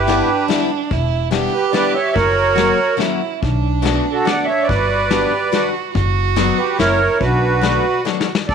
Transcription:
0.00 0.20 G1 loud
0.00 0.46 G4 medium
0.00 0.46 B4 medium
0.07 0.29 G3 medium
0.07 0.29 B3 medium
0.07 0.93 D4 loud
0.07 0.29 D4 medium
0.07 0.29 E4 medium
0.07 snare medium
0.07 closed hi-hat soft
0.48 0.70 G3 medium
0.48 0.70 B3 medium
0.48 0.70 D4 medium
0.48 0.70 E4 medium
0.48 snare medium
0.48 closed hi-hat soft
0.91 1.45 E1 medium
0.91 1.32 E4 medium
0.91 kick medium
0.91 closed hi-hat soft
1.31 1.53 G3 medium
1.31 1.53 B3 medium
1.31 1.53 D4 medium
1.31 1.53 E4 medium
1.31 2.16 G4 loud
1.31 snare medium
1.31 closed hi-hat soft
1.54 1.73 G4 medium
1.54 1.72 B4 medium
1.72 1.95 G3 medium
1.72 1.95 B3 soft
1.72 1.95 D4 medium
1.72 1.95 E4 medium
1.72 1.94 B4 medium
1.72 1.93 D5 loud
1.72 snare medium
1.72 closed hi-hat soft
1.93 2.10 C#5 medium
1.93 2.15 E5 medium
2.12 2.70 F#1 medium
2.12 3.00 F#4 loud
2.12 2.96 A#4 medium
2.12 2.94 C#5 loud
2.12 kick medium
2.12 closed hi-hat soft
2.55 2.78 F#3 medium
2.55 2.78 A#3 medium
2.55 2.79 C#4 medium
2.55 2.78 F#4 medium
2.55 snare medium
2.55 closed hi-hat soft
2.97 3.20 F#3 medium
2.97 3.21 A#3 medium
2.97 3.21 C#4 medium
2.97 3.43 E4 medium
2.97 3.21 F#4 medium
2.97 snare medium
2.97 closed hi-hat soft
3.41 3.97 B1 medium
3.41 4.71 D4 medium
3.41 kick medium
3.41 closed hi-hat soft
3.82 4.05 A3 medium
3.82 4.05 B3 medium
3.82 4.05 D4 medium
3.82 4.06 F#4 medium
3.82 snare medium
3.82 closed hi-hat medium
4.12 4.26 F#4 medium
4.12 4.25 A4 medium
4.24 4.48 A3 medium
4.24 4.48 B3 soft
4.24 4.48 D4 soft
4.24 4.48 F#4 medium
4.24 4.46 D5 medium
4.24 4.46 F#5 medium
4.24 snare medium
4.24 closed hi-hat soft
4.45 4.67 C#5 medium
4.45 4.68 E5 medium
4.63 5.69 B4 medium
4.63 5.67 D5 loud
4.69 5.23 G1 medium
4.69 5.11 F#4 medium
4.69 kick medium
4.69 closed hi-hat soft
5.10 5.32 G3 medium
5.10 5.32 B3 soft
5.10 5.33 D4 medium
5.10 5.33 F#4 medium
5.10 5.52 G4 medium
5.10 snare medium
5.10 closed hi-hat soft
5.52 5.74 G3 medium
5.52 5.74 B3 medium
5.52 5.74 D4 medium
5.52 5.74 F#4 medium
5.52 5.92 F#4 medium
5.52 snare medium
5.52 closed hi-hat soft
5.94 6.49 F#1 loud
5.94 6.81 F#4 loud
5.94 kick medium
5.94 closed hi-hat soft
6.36 6.58 F#3 medium
6.36 6.58 B3 medium
6.36 6.58 D4 medium
6.36 6.58 F#4 medium
6.36 snare medium
6.36 closed hi-hat soft
6.58 6.77 G4 medium
6.58 6.79 B4 medium
6.78 7.06 F#1 loud
6.78 7.00 F#3 medium
6.78 7.00 A#3 medium
6.78 7.00 C#4 medium
6.78 7.00 E4 medium
6.78 7.21 E4 medium
6.78 7.18 A#4 medium
6.78 7.21 C#5 loud
6.78 snare medium
6.78 closed hi-hat soft
7.20 7.76 B1 medium
7.20 7.63 D4 medium
7.20 8.02 F#4 medium
7.20 8.01 B4 medium
7.20 kick medium
7.20 closed hi-hat soft
7.61 7.84 F#3 medium
7.61 7.84 A3 medium
7.61 7.84 B3 medium
7.61 7.84 D4 medium
7.61 8.27 F#4 medium
7.61 snare medium
7.61 closed hi-hat medium
8.05 8.28 F#3 medium
8.05 8.27 A3 medium
8.05 8.28 B3 medium
8.05 8.27 D4 medium
8.05 snare soft
8.21 snare medium
8.35 snare medium
8.48 8.55 D2 medium
8.48 8.55 A4 medium
8.48 8.55 D5 medium
8.48 kick medium
8.48 ride soft

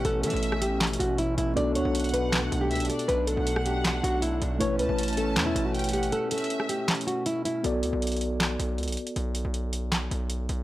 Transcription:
0.00 7.60 B2 medium
0.00 1.52 A3 medium
0.00 4.56 A3 medium
0.00 1.54 C#4 medium
0.00 1.52 E4 medium
0.00 1.53 B4 medium
0.00 1.53 C#5 medium
0.05 0.25 A1 loud
0.05 0.23 A4 loud
0.05 closed hi-hat medium
0.23 0.33 E3 medium
0.23 0.60 A4 medium
0.23 0.77 E5 medium
0.23 closed hi-hat medium
0.23 open hi-hat medium
0.30 0.97 A1 loud
0.30 closed hi-hat medium
0.36 closed hi-hat soft
0.43 closed hi-hat medium
0.52 cross-stick medium
0.62 0.79 G4 medium
0.62 closed hi-hat medium
0.81 snare loud
0.81 clap loud
0.81 closed hi-hat soft
0.87 closed hi-hat medium
0.93 closed hi-hat medium
1.00 1.36 A1 loud
1.00 1.17 F#4 medium
1.00 closed hi-hat medium
1.18 1.36 E4 medium
1.18 closed hi-hat medium
1.38 1.56 A1 loud
1.38 1.55 E4 medium
1.38 closed hi-hat medium
1.55 1.77 B1 loud
1.55 4.56 B3 medium
1.55 4.57 D4 medium
1.55 4.56 F#4 medium
1.55 4.57 A4 medium
1.55 1.74 D5 loud
1.55 closed hi-hat medium
1.75 1.84 D2 medium
1.75 2.11 C#5 medium
1.75 2.67 F#5 medium
1.75 closed hi-hat medium
1.85 2.49 B1 loud
1.95 closed hi-hat medium
2.00 closed hi-hat medium
2.04 closed hi-hat medium
2.09 closed hi-hat soft
2.14 2.40 B4 medium
2.14 closed hi-hat medium
2.33 snare loud
2.33 clap loud
2.33 closed hi-hat medium
2.42 2.60 F#4 medium
2.52 2.72 B1 loud
2.52 closed hi-hat medium
2.61 2.88 G4 medium
2.71 2.82 C#2 loud
2.71 2.89 E5 medium
2.71 closed hi-hat soft
2.75 closed hi-hat medium
2.80 2.89 B1 loud
2.80 closed hi-hat medium
2.85 closed hi-hat medium
2.89 3.07 A4 medium
2.89 3.08 D5 medium
2.89 closed hi-hat medium
2.99 closed hi-hat medium
3.08 3.36 B1 loud
3.08 3.26 B4 loud
3.08 closed hi-hat medium
3.27 3.63 A4 medium
3.27 4.57 F#5 medium
3.27 closed hi-hat medium
3.37 4.01 B1 loud
3.47 closed hi-hat medium
3.56 cross-stick loud
3.66 3.83 G4 medium
3.66 closed hi-hat medium
3.85 snare loud
3.85 clap loud
3.85 closed hi-hat medium
4.04 4.40 B1 loud
4.04 4.21 F#4 loud
4.04 closed hi-hat medium
4.22 4.40 E4 medium
4.22 closed hi-hat medium
4.42 4.60 B1 loud
4.42 4.59 D4 medium
4.42 closed hi-hat medium
4.59 4.81 A1 loud
4.59 7.59 A3 medium
4.59 7.61 A3 medium
4.59 7.61 C#4 medium
4.59 7.60 E4 medium
4.59 7.60 B4 medium
4.59 4.78 C#5 loud
4.59 7.61 C#5 medium
4.59 closed hi-hat medium
4.79 4.89 C#2 loud
4.79 5.15 B4 medium
4.79 5.70 A5 medium
4.79 closed hi-hat medium
4.89 5.38 A1 loud
4.99 closed hi-hat medium
5.03 closed hi-hat medium
5.08 closed hi-hat medium
5.13 closed hi-hat soft
5.17 5.44 A4 medium
5.17 closed hi-hat medium
5.36 5.54 E2 loud
5.36 snare loud
5.36 clap loud
5.36 closed hi-hat medium
5.46 5.64 E4 medium
5.55 6.10 A1 loud
5.55 closed hi-hat medium
5.65 5.92 F#4 medium
5.75 5.93 G5 medium
5.75 closed hi-hat soft
5.79 closed hi-hat medium
5.84 closed hi-hat medium
5.89 closed hi-hat medium
5.93 6.11 G4 medium
5.93 6.11 F#5 medium
5.93 closed hi-hat medium
6.03 closed hi-hat medium
6.12 6.30 A4 loud
6.12 closed hi-hat medium
6.31 6.67 A4 medium
6.31 6.85 E5 medium
6.31 closed hi-hat medium
6.31 open hi-hat medium
6.38 closed hi-hat medium
6.44 closed hi-hat soft
6.50 closed hi-hat medium
6.60 cross-stick medium
6.69 6.87 G4 medium
6.69 closed hi-hat medium
6.88 snare loud
6.88 clap loud
6.88 closed hi-hat soft
6.95 closed hi-hat medium
7.01 closed hi-hat medium
7.07 7.25 F#4 medium
7.07 closed hi-hat medium
7.26 7.44 E4 medium
7.26 closed hi-hat medium
7.45 7.63 E4 medium
7.45 closed hi-hat medium
7.63 7.85 B1 loud
7.63 10.63 B3 medium
7.63 10.63 F#4 medium
7.63 10.63 A4 medium
7.63 10.63 D5 medium
7.63 closed hi-hat medium
7.83 7.92 D2 loud
7.83 closed hi-hat medium
7.93 8.57 B1 loud
8.02 closed hi-hat medium
8.07 closed hi-hat medium
8.12 closed hi-hat medium
8.16 closed hi-hat soft
8.21 closed hi-hat medium
8.40 snare loud
8.40 clap loud
8.40 closed hi-hat medium
8.59 8.80 B1 loud
8.59 closed hi-hat medium
8.78 8.89 C#2 loud
8.78 closed hi-hat soft
8.83 closed hi-hat medium
8.88 8.97 B1 loud
8.88 closed hi-hat medium
8.92 closed hi-hat medium
8.97 closed hi-hat medium
9.07 closed hi-hat medium
9.16 9.44 B1 loud
9.16 closed hi-hat medium
9.35 closed hi-hat medium
9.45 10.08 B1 loud
9.54 closed hi-hat medium
9.73 closed hi-hat medium
9.92 snare loud
9.92 clap loud
9.92 closed hi-hat medium
10.11 10.48 B1 loud
10.11 closed hi-hat medium
10.30 closed hi-hat medium
10.49 10.63 B1 loud
10.49 closed hi-hat medium

